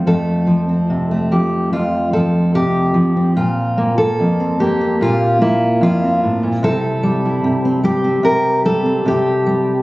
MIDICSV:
0, 0, Header, 1, 2, 480
1, 0, Start_track
1, 0, Key_signature, -1, "major"
1, 0, Tempo, 828729
1, 27, Time_signature, 4, 2, 24, 8
1, 2906, Tempo, 811908
1, 5748, End_track
2, 0, Start_track
2, 0, Title_t, "Steel-string acoustic guitar"
2, 0, Program_c, 0, 25
2, 37, Note_on_c, 0, 41, 60
2, 40, Note_on_c, 0, 53, 36
2, 41, Note_on_c, 0, 69, 77
2, 43, Note_on_c, 0, 57, 38
2, 49, Note_on_c, 0, 60, 37
2, 268, Note_off_c, 0, 53, 0
2, 271, Note_on_c, 0, 53, 53
2, 396, Note_off_c, 0, 60, 0
2, 398, Note_on_c, 0, 60, 35
2, 520, Note_on_c, 0, 48, 50
2, 636, Note_off_c, 0, 57, 0
2, 643, Note_on_c, 0, 57, 38
2, 757, Note_off_c, 0, 48, 0
2, 758, Note_off_c, 0, 53, 0
2, 760, Note_off_c, 0, 69, 0
2, 761, Note_on_c, 0, 53, 53
2, 764, Note_on_c, 0, 67, 67
2, 992, Note_off_c, 0, 41, 0
2, 999, Note_off_c, 0, 67, 0
2, 999, Note_on_c, 0, 41, 66
2, 1001, Note_on_c, 0, 65, 73
2, 1227, Note_off_c, 0, 53, 0
2, 1233, Note_off_c, 0, 65, 0
2, 1234, Note_on_c, 0, 53, 51
2, 1235, Note_on_c, 0, 69, 76
2, 1474, Note_off_c, 0, 69, 0
2, 1476, Note_on_c, 0, 48, 61
2, 1477, Note_on_c, 0, 67, 82
2, 1695, Note_off_c, 0, 53, 0
2, 1702, Note_on_c, 0, 53, 60
2, 1714, Note_off_c, 0, 48, 0
2, 1832, Note_off_c, 0, 60, 0
2, 1834, Note_on_c, 0, 60, 38
2, 1917, Note_off_c, 0, 53, 0
2, 1928, Note_off_c, 0, 57, 0
2, 1948, Note_off_c, 0, 67, 0
2, 1948, Note_on_c, 0, 46, 58
2, 1950, Note_on_c, 0, 65, 80
2, 1954, Note_off_c, 0, 41, 0
2, 2187, Note_on_c, 0, 58, 60
2, 2302, Note_off_c, 0, 65, 0
2, 2304, Note_on_c, 0, 69, 95
2, 2427, Note_off_c, 0, 46, 0
2, 2430, Note_on_c, 0, 41, 61
2, 2549, Note_off_c, 0, 60, 0
2, 2549, Note_on_c, 0, 60, 37
2, 2663, Note_off_c, 0, 58, 0
2, 2664, Note_on_c, 0, 67, 76
2, 2665, Note_on_c, 0, 58, 55
2, 2783, Note_off_c, 0, 60, 0
2, 2786, Note_on_c, 0, 60, 46
2, 2901, Note_on_c, 0, 46, 65
2, 2903, Note_off_c, 0, 69, 0
2, 2906, Note_off_c, 0, 41, 0
2, 2910, Note_on_c, 0, 65, 88
2, 3133, Note_off_c, 0, 58, 0
2, 3140, Note_off_c, 0, 67, 0
2, 3140, Note_on_c, 0, 58, 62
2, 3143, Note_on_c, 0, 64, 79
2, 3375, Note_on_c, 0, 41, 64
2, 3379, Note_off_c, 0, 65, 0
2, 3384, Note_off_c, 0, 46, 0
2, 3386, Note_on_c, 0, 65, 88
2, 3510, Note_off_c, 0, 60, 0
2, 3513, Note_on_c, 0, 60, 44
2, 3619, Note_off_c, 0, 41, 0
2, 3625, Note_on_c, 0, 45, 64
2, 3741, Note_on_c, 0, 46, 58
2, 3745, Note_off_c, 0, 45, 0
2, 3832, Note_off_c, 0, 58, 0
2, 3858, Note_on_c, 0, 48, 68
2, 3862, Note_off_c, 0, 64, 0
2, 3863, Note_off_c, 0, 46, 0
2, 3863, Note_off_c, 0, 65, 0
2, 3864, Note_on_c, 0, 55, 46
2, 3865, Note_off_c, 0, 60, 0
2, 3865, Note_on_c, 0, 69, 100
2, 3868, Note_on_c, 0, 60, 49
2, 3873, Note_on_c, 0, 64, 46
2, 4095, Note_off_c, 0, 55, 0
2, 4097, Note_on_c, 0, 55, 64
2, 4220, Note_off_c, 0, 64, 0
2, 4228, Note_on_c, 0, 64, 46
2, 4332, Note_off_c, 0, 48, 0
2, 4339, Note_on_c, 0, 48, 61
2, 4460, Note_off_c, 0, 60, 0
2, 4463, Note_on_c, 0, 60, 41
2, 4569, Note_off_c, 0, 55, 0
2, 4571, Note_on_c, 0, 55, 54
2, 4576, Note_off_c, 0, 64, 0
2, 4578, Note_on_c, 0, 67, 77
2, 4692, Note_off_c, 0, 60, 0
2, 4694, Note_on_c, 0, 60, 48
2, 4798, Note_off_c, 0, 48, 0
2, 4806, Note_on_c, 0, 48, 71
2, 4812, Note_off_c, 0, 69, 0
2, 4815, Note_on_c, 0, 70, 100
2, 5046, Note_off_c, 0, 55, 0
2, 5054, Note_on_c, 0, 55, 56
2, 5055, Note_off_c, 0, 70, 0
2, 5057, Note_on_c, 0, 69, 94
2, 5173, Note_off_c, 0, 60, 0
2, 5176, Note_on_c, 0, 60, 42
2, 5285, Note_off_c, 0, 48, 0
2, 5292, Note_on_c, 0, 48, 62
2, 5299, Note_off_c, 0, 67, 0
2, 5306, Note_on_c, 0, 67, 89
2, 5527, Note_off_c, 0, 55, 0
2, 5534, Note_on_c, 0, 55, 58
2, 5748, Note_off_c, 0, 48, 0
2, 5748, Note_off_c, 0, 55, 0
2, 5748, Note_off_c, 0, 60, 0
2, 5748, Note_off_c, 0, 67, 0
2, 5748, Note_off_c, 0, 69, 0
2, 5748, End_track
0, 0, End_of_file